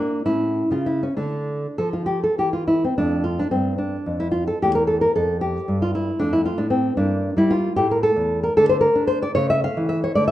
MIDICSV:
0, 0, Header, 1, 2, 480
1, 0, Start_track
1, 0, Tempo, 597610
1, 935, Time_signature, 6, 3, 24, 8
1, 2385, Tempo, 554017
1, 2865, Tempo, 541516
1, 4305, Tempo, 524017
1, 9035, End_track
2, 0, Start_track
2, 0, Title_t, "Nylon-string guitar"
2, 0, Program_c, 0, 24
2, 0, Note_on_c, 0, 58, 56
2, 0, Note_on_c, 0, 62, 77
2, 151, Note_off_c, 0, 58, 0
2, 204, Note_off_c, 0, 62, 0
2, 206, Note_on_c, 0, 64, 79
2, 211, Note_on_c, 0, 45, 61
2, 213, Note_on_c, 0, 61, 40
2, 495, Note_off_c, 0, 45, 0
2, 550, Note_off_c, 0, 64, 0
2, 568, Note_on_c, 0, 49, 51
2, 576, Note_on_c, 0, 65, 70
2, 692, Note_on_c, 0, 64, 67
2, 693, Note_off_c, 0, 65, 0
2, 813, Note_off_c, 0, 64, 0
2, 816, Note_off_c, 0, 61, 0
2, 826, Note_on_c, 0, 61, 66
2, 861, Note_off_c, 0, 49, 0
2, 936, Note_on_c, 0, 62, 64
2, 940, Note_off_c, 0, 61, 0
2, 940, Note_on_c, 0, 50, 60
2, 943, Note_on_c, 0, 57, 38
2, 1331, Note_off_c, 0, 50, 0
2, 1407, Note_off_c, 0, 62, 0
2, 1431, Note_on_c, 0, 69, 72
2, 1437, Note_on_c, 0, 53, 51
2, 1549, Note_off_c, 0, 69, 0
2, 1552, Note_on_c, 0, 65, 60
2, 1651, Note_off_c, 0, 65, 0
2, 1654, Note_on_c, 0, 67, 74
2, 1780, Note_off_c, 0, 67, 0
2, 1795, Note_on_c, 0, 69, 61
2, 1817, Note_off_c, 0, 53, 0
2, 1911, Note_off_c, 0, 69, 0
2, 1914, Note_on_c, 0, 52, 46
2, 1918, Note_on_c, 0, 67, 66
2, 2029, Note_off_c, 0, 67, 0
2, 2032, Note_on_c, 0, 65, 63
2, 2145, Note_off_c, 0, 65, 0
2, 2149, Note_on_c, 0, 64, 74
2, 2270, Note_off_c, 0, 64, 0
2, 2284, Note_on_c, 0, 60, 63
2, 2295, Note_off_c, 0, 52, 0
2, 2357, Note_off_c, 0, 57, 0
2, 2389, Note_off_c, 0, 60, 0
2, 2392, Note_on_c, 0, 41, 60
2, 2392, Note_on_c, 0, 62, 78
2, 2399, Note_on_c, 0, 57, 36
2, 2618, Note_on_c, 0, 65, 70
2, 2620, Note_off_c, 0, 62, 0
2, 2742, Note_off_c, 0, 65, 0
2, 2752, Note_on_c, 0, 62, 72
2, 2774, Note_off_c, 0, 41, 0
2, 2851, Note_off_c, 0, 62, 0
2, 2855, Note_on_c, 0, 60, 71
2, 2859, Note_on_c, 0, 43, 53
2, 3091, Note_off_c, 0, 60, 0
2, 3095, Note_on_c, 0, 62, 60
2, 3248, Note_off_c, 0, 43, 0
2, 3343, Note_on_c, 0, 41, 47
2, 3446, Note_off_c, 0, 62, 0
2, 3463, Note_on_c, 0, 64, 70
2, 3563, Note_off_c, 0, 64, 0
2, 3567, Note_on_c, 0, 65, 80
2, 3697, Note_off_c, 0, 65, 0
2, 3708, Note_on_c, 0, 69, 71
2, 3729, Note_off_c, 0, 41, 0
2, 3799, Note_off_c, 0, 57, 0
2, 3828, Note_off_c, 0, 69, 0
2, 3840, Note_on_c, 0, 67, 80
2, 3848, Note_on_c, 0, 40, 57
2, 3850, Note_on_c, 0, 57, 39
2, 3949, Note_off_c, 0, 67, 0
2, 3953, Note_on_c, 0, 70, 69
2, 4057, Note_off_c, 0, 70, 0
2, 4061, Note_on_c, 0, 69, 70
2, 4181, Note_off_c, 0, 69, 0
2, 4185, Note_on_c, 0, 70, 75
2, 4224, Note_off_c, 0, 40, 0
2, 4305, Note_off_c, 0, 70, 0
2, 4312, Note_on_c, 0, 69, 75
2, 4316, Note_on_c, 0, 41, 49
2, 4540, Note_off_c, 0, 69, 0
2, 4547, Note_on_c, 0, 67, 76
2, 4696, Note_off_c, 0, 41, 0
2, 4793, Note_on_c, 0, 43, 47
2, 4893, Note_off_c, 0, 67, 0
2, 4922, Note_on_c, 0, 65, 73
2, 5035, Note_off_c, 0, 65, 0
2, 5038, Note_on_c, 0, 64, 73
2, 5176, Note_off_c, 0, 43, 0
2, 5242, Note_off_c, 0, 57, 0
2, 5264, Note_off_c, 0, 64, 0
2, 5264, Note_on_c, 0, 62, 93
2, 5270, Note_on_c, 0, 57, 42
2, 5276, Note_on_c, 0, 41, 57
2, 5384, Note_off_c, 0, 62, 0
2, 5386, Note_on_c, 0, 64, 68
2, 5498, Note_off_c, 0, 64, 0
2, 5502, Note_on_c, 0, 65, 74
2, 5556, Note_off_c, 0, 41, 0
2, 5614, Note_on_c, 0, 62, 75
2, 5618, Note_on_c, 0, 45, 51
2, 5621, Note_off_c, 0, 65, 0
2, 5726, Note_off_c, 0, 62, 0
2, 5729, Note_on_c, 0, 60, 72
2, 5908, Note_off_c, 0, 45, 0
2, 5947, Note_off_c, 0, 57, 0
2, 5966, Note_off_c, 0, 60, 0
2, 5974, Note_on_c, 0, 43, 57
2, 5975, Note_on_c, 0, 62, 72
2, 5977, Note_on_c, 0, 58, 43
2, 6269, Note_off_c, 0, 43, 0
2, 6326, Note_off_c, 0, 62, 0
2, 6337, Note_on_c, 0, 55, 56
2, 6347, Note_on_c, 0, 64, 78
2, 6465, Note_on_c, 0, 65, 83
2, 6467, Note_off_c, 0, 64, 0
2, 6627, Note_off_c, 0, 55, 0
2, 6665, Note_off_c, 0, 58, 0
2, 6694, Note_off_c, 0, 65, 0
2, 6701, Note_on_c, 0, 67, 91
2, 6709, Note_on_c, 0, 45, 61
2, 6711, Note_on_c, 0, 57, 47
2, 6821, Note_off_c, 0, 67, 0
2, 6838, Note_on_c, 0, 70, 76
2, 6942, Note_off_c, 0, 70, 0
2, 6946, Note_on_c, 0, 69, 81
2, 6994, Note_off_c, 0, 45, 0
2, 7067, Note_on_c, 0, 40, 53
2, 7288, Note_off_c, 0, 69, 0
2, 7315, Note_on_c, 0, 70, 77
2, 7352, Note_off_c, 0, 40, 0
2, 7386, Note_off_c, 0, 57, 0
2, 7428, Note_off_c, 0, 70, 0
2, 7439, Note_on_c, 0, 69, 96
2, 7441, Note_on_c, 0, 50, 58
2, 7443, Note_on_c, 0, 57, 41
2, 7549, Note_off_c, 0, 69, 0
2, 7553, Note_on_c, 0, 72, 87
2, 7654, Note_off_c, 0, 72, 0
2, 7657, Note_on_c, 0, 70, 84
2, 7721, Note_off_c, 0, 50, 0
2, 7791, Note_on_c, 0, 62, 60
2, 7890, Note_off_c, 0, 70, 0
2, 7901, Note_on_c, 0, 72, 92
2, 8023, Note_off_c, 0, 72, 0
2, 8039, Note_on_c, 0, 74, 86
2, 8078, Note_off_c, 0, 62, 0
2, 8119, Note_off_c, 0, 57, 0
2, 8149, Note_off_c, 0, 74, 0
2, 8152, Note_on_c, 0, 73, 100
2, 8162, Note_on_c, 0, 49, 70
2, 8168, Note_on_c, 0, 57, 47
2, 8269, Note_off_c, 0, 73, 0
2, 8291, Note_on_c, 0, 76, 93
2, 8397, Note_off_c, 0, 76, 0
2, 8420, Note_on_c, 0, 77, 84
2, 8442, Note_off_c, 0, 49, 0
2, 8538, Note_on_c, 0, 52, 61
2, 8631, Note_off_c, 0, 77, 0
2, 8648, Note_on_c, 0, 76, 82
2, 8755, Note_off_c, 0, 76, 0
2, 8783, Note_on_c, 0, 73, 80
2, 8812, Note_off_c, 0, 52, 0
2, 8836, Note_off_c, 0, 57, 0
2, 8883, Note_off_c, 0, 73, 0
2, 8890, Note_on_c, 0, 74, 91
2, 8895, Note_on_c, 0, 57, 46
2, 8899, Note_on_c, 0, 50, 63
2, 8998, Note_off_c, 0, 74, 0
2, 9002, Note_on_c, 0, 76, 87
2, 9035, Note_off_c, 0, 50, 0
2, 9035, Note_off_c, 0, 57, 0
2, 9035, Note_off_c, 0, 76, 0
2, 9035, End_track
0, 0, End_of_file